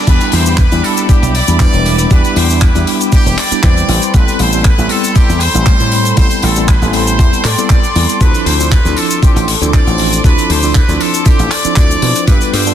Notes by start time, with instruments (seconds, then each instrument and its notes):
Already playing: string section B5
0.07 slap bass E2, tine electric piano G3 B3 D4 E4 G4, trumpet section B4, string section E5 G5 D6, kick, closed hi-hat, crash, tambourine, cabasa
0.20 closed hi-hat, tambourine, cabasa
0.32 slap bass E2, trumpet section C5, open hi-hat, tambourine
0.46 tine electric piano G3 B3 D4 E4 G4, tambourine, cabasa
0.57 trumpet section B4, kick, clap, closed hi-hat, tambourine, cabasa
0.72 slap bass E2, tine electric piano G3 B3 D4 E4 G4, closed hi-hat, tambourine, cabasa
0.84 trumpet section A4, open hi-hat, tambourine
0.97 closed hi-hat, tambourine, cabasa
1.09 tine electric piano G3 B3 D4 E4 G4, trumpet section G4, muted slap bass stroke, kick, closed hi-hat, tambourine, cabasa
1.22 slap bass B1, closed hi-hat, tambourine, cabasa
1.35 trumpet section D5, open hi-hat, tambourine
1.48 slap bass E2, tine electric piano G3 B3 D4 E4 G4, closed hi-hat, tambourine, cabasa
1.60 tine electric piano G3 B3 D4 E4 B4, trumpet section D5, kick, clap, closed hi-hat, tambourine, cabasa
1.73 slap bass E1, closed hi-hat, tambourine, cabasa
1.86 open hi-hat, tambourine
1.99 closed hi-hat, tambourine, cabasa
2.11 slap bass E2, tine electric piano G3 B3 D4 E4 G4, trumpet section B4, kick, closed hi-hat, tambourine, cabasa
2.24 closed hi-hat, tambourine, cabasa
2.36 slap bass E2, trumpet section C5, open hi-hat, tambourine
2.50 tine electric piano G3 B3 D4 E4 G4, tambourine, cabasa
2.61 trumpet section B4, kick, clap, closed hi-hat, tambourine, cabasa
2.75 slap bass E2, tine electric piano G3 B3 D4 E4 G4, closed hi-hat, tambourine, cabasa
2.87 open hi-hat, tambourine
3.00 closed hi-hat, tambourine, cabasa
3.12 tine electric piano G3 B3 D4 E4 G4, trumpet section G4, kick, closed hi-hat, tambourine, cabasa
3.26 slap bass E1, closed hi-hat, tambourine, cabasa
3.38 trumpet section D5, clap, open hi-hat, tambourine
3.51 tine electric piano G3 B3 D4 E4 G4, muted slap bass stroke, closed hi-hat, tambourine, cabasa
3.63 slap bass E2, tine electric piano G3 C4 E4 B4 C5, trumpet section D5, kick, clap, closed hi-hat, tambourine, cabasa
3.77 closed hi-hat, tambourine, cabasa
3.89 slap bass A1, string section A4 B5 C6, open hi-hat, tambourine
4.02 closed hi-hat, tambourine, cabasa
4.14 slap bass A1, tine electric piano G3 B3 C4 E4 A4, trumpet section B4, kick, closed hi-hat, tambourine, cabasa
4.28 closed hi-hat, tambourine, cabasa
4.39 slap bass A1, trumpet section C5, open hi-hat, tambourine
4.52 tine electric piano G3 B3 C4 E4 A4, tambourine, cabasa
4.65 trumpet section B4, kick, clap, closed hi-hat, tambourine, cabasa
4.78 slap bass A1, tine electric piano G3 B3 C4 E4 A4, closed hi-hat, tambourine, cabasa
4.89 trumpet section A4, open hi-hat, tambourine
5.04 closed hi-hat, tambourine, cabasa
5.15 tine electric piano G3 B3 C4 E4 A4, trumpet section G4, muted slap bass stroke, kick, closed hi-hat, tambourine, cabasa
5.29 slap bass E2, closed hi-hat, tambourine, cabasa
5.40 trumpet section C5, open hi-hat, tambourine
5.54 slap bass A1, tine electric piano G3 B3 C4 E4 A4, closed hi-hat, tambourine, cabasa
5.66 tine electric piano G3 A3 E4 C5, kick, clap, closed hi-hat, tambourine, cabasa
5.80 slap bass A2, closed hi-hat, tambourine, cabasa
5.92 open hi-hat, tambourine
6.05 closed hi-hat, tambourine, cabasa
6.17 slap bass A1, tine electric piano G3 B3 C4 E4 A4, trumpet section C5, kick, closed hi-hat, tambourine, cabasa
6.30 closed hi-hat, tambourine, cabasa
6.42 slap bass A1, trumpet section A4, open hi-hat, tambourine
6.56 tine electric piano G3 B3 C4 E4 A4, closed hi-hat, tambourine, cabasa
6.68 trumpet section B4, kick, clap, closed hi-hat, tambourine, cabasa
6.81 slap bass A1, tine electric piano G3 B3 C4 E4 A4, closed hi-hat, tambourine, cabasa
6.93 trumpet section C5, open hi-hat, tambourine
7.07 closed hi-hat, tambourine, cabasa
7.19 slap bass E2, tine electric piano G3 B3 C4 E4 A4, kick, closed hi-hat, tambourine, cabasa
7.33 muted slap bass stroke, closed hi-hat, tambourine, cabasa
7.44 slap bass A2, trumpet section D5, clap, open hi-hat, tambourine
7.58 tine electric piano G3 B3 C4 E4 A4, closed hi-hat, tambourine, cabasa
7.69 trumpet section D5, kick, clap, closed hi-hat, tambourine, cabasa
7.83 closed hi-hat, tambourine, cabasa
7.95 slap bass E2, tine electric piano G3 B3 C4 E4 A4, open hi-hat, tambourine
8.09 closed hi-hat, tambourine, cabasa
8.21 slap bass D2, tine electric piano F3 C4 D4 E4 A4, trumpet section B4, string section D6, kick, closed hi-hat, tambourine, cabasa
8.34 closed hi-hat, tambourine, cabasa
8.46 slap bass D2, trumpet section C5, open hi-hat, tambourine
8.59 tine electric piano F3 C4 D4 E4 A4, tambourine, cabasa
8.71 trumpet section B4, kick, clap, closed hi-hat, tambourine, cabasa
8.85 slap bass D2, tine electric piano F3 C4 D4 E4 A4, closed hi-hat, tambourine, cabasa
8.96 trumpet section A4, open hi-hat, tambourine
9.11 closed hi-hat, tambourine, cabasa
9.22 tine electric piano F3 C4 D4 E4 A4, trumpet section G4, muted slap bass stroke, kick, closed hi-hat, tambourine, cabasa
9.36 slap bass A1, closed hi-hat, tambourine, cabasa
9.48 open hi-hat, tambourine
9.61 slap bass D2, tine electric piano F3 C4 D4 E4 A4, closed hi-hat, tambourine, cabasa
9.73 tine electric piano F3, trumpet section D5, kick, clap, closed hi-hat, tambourine, cabasa
9.87 slap bass A1, closed hi-hat, tambourine, cabasa
9.98 open hi-hat, tambourine
10.13 closed hi-hat, tambourine, cabasa
10.24 slap bass D2, tine electric piano F3 C4 D4 E4 A4, trumpet section B4, kick, closed hi-hat, tambourine, cabasa
10.38 closed hi-hat, tambourine, cabasa
10.50 slap bass D2, trumpet section C5, open hi-hat, tambourine
10.62 tine electric piano F3 C4 D4 E4 A4, tambourine, cabasa
10.75 trumpet section B4, kick, clap, closed hi-hat, tambourine, cabasa
10.88 slap bass D2, tine electric piano F3 C4 D4 E4 A4, closed hi-hat, tambourine, cabasa
11.00 trumpet section A4, open hi-hat, tambourine
11.14 closed hi-hat, tambourine, cabasa
11.26 tine electric piano F3 C4 D4 E4 A4, trumpet section G4, kick, closed hi-hat, tambourine, cabasa
11.39 slap bass A1, closed hi-hat, tambourine, cabasa
11.51 trumpet section D5, clap, open hi-hat, tambourine
11.64 tine electric piano F3 C4 D4 E4 A4, muted slap bass stroke, closed hi-hat, tambourine, cabasa
11.76 slap bass D2, tine electric piano C5, trumpet section D5, kick, clap, closed hi-hat, tambourine, cabasa
11.91 closed hi-hat, tambourine, cabasa
12.02 slap bass B2, open hi-hat, tambourine
12.15 closed hi-hat, tambourine, cabasa
12.27 slap bass G2, tine electric piano G3 B3 D4 F4 A4, trumpet section B4, string section B4 G5, kick, closed hi-hat, tambourine, cabasa
12.41 closed hi-hat, tambourine, cabasa
12.53 slap bass G2, trumpet section C5, open hi-hat, tambourine
12.66 tine electric piano G3 B3 D4 F4 A4, cabasa